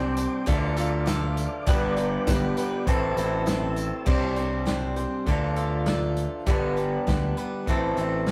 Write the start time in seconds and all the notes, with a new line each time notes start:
Already playing: C2 C3 G3 C4 D4 G4 C5 D5 G5 D6
0.17 C4 D4 C5, closed hi-hat, tambourine
0.46 D2 D3 F3 A3 D4 F4 A4 D5 F5, kick, closed hi-hat, tambourine
0.77 D4 F4 A4, closed hi-hat, tambourine
1.06 F3 D4 F4 A4, snare, closed hi-hat, tambourine
1.37 closed hi-hat, tambourine
1.66 G1 G2 D3 G3 B3 D4 G4 B4 G5, kick, closed hi-hat, tambourine
1.97 G3 B3 D4 B4, closed hi-hat, tambourine
2.27 G1 G3 B3 D4 B4, kick, snare, closed hi-hat, tambourine
2.57 G3 B3 D4 B4, closed hi-hat, tambourine
2.86 A1 A2 E3 A3 C4 E4 A4 C5 E5 A5 E6, kick, closed hi-hat, tambourine
3.16 A1 A3 C4 E4 A4, closed hi-hat, tambourine
3.46 A3 C4 E4 A4, snare, closed hi-hat, tambourine
3.76 closed hi-hat, tambourine
4.06 C2 C3 G3 C4 D4 G4 C5, kick, crash
4.36 C4 D4 C5, closed hi-hat
4.66 G3 C4 D4 C5, snare, closed hi-hat
4.96 C4 D4 C5, closed hi-hat
5.26 D2 D3 F3 A3 D4 F4 A4, kick, closed hi-hat
5.56 D4 F4 A4, closed hi-hat
5.86 F3 D4 F4 A4, snare, closed hi-hat
6.17 closed hi-hat
6.46 G1 G2 D3 G3 B3 D4 G4 B4, kick, closed hi-hat
6.76 G3 B3 D4 B4, closed hi-hat
7.07 D2 G3 B3 D4 B4, kick, snare, closed hi-hat
7.37 G3 B3 D4 B4, closed hi-hat
7.67 A1 A2 E3 A3 C4 E4 A4, kick, closed hi-hat
7.97 A1 A3 C4 E4 A4, closed hi-hat
8.27 A3, snare, closed hi-hat